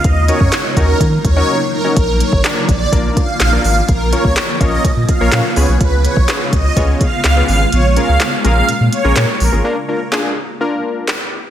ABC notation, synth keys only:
X:1
M:4/4
L:1/16
Q:1/4=125
K:Bbphr
V:1 name="Synth keys"
z2 [DEGBd]2 z2 [DEGBd]2 z3 [DEGBd]2 z2 [DEGBd] | z4 [B,=DFB=d]2 z2 [B,DFBd]2 z3 [B,DFBd]2 z | z2 [B,DFBd]2 z2 [B,DFBd]2 z3 [B,DFBd]2 z [CDFAc]2- | [CDFAc]3 z [CDFAc]2 z2 [CDFAd]2 z3 [CDFAc]2 z |
z2 [B,DFAB]2 z2 [B,DFAB]2 z3 [B,DFAB]2 z2 [B,DFAB] | [B,=DFB] z [B,DFB] z [B,DFA]2 z2 [B,DFB]4 z4 |]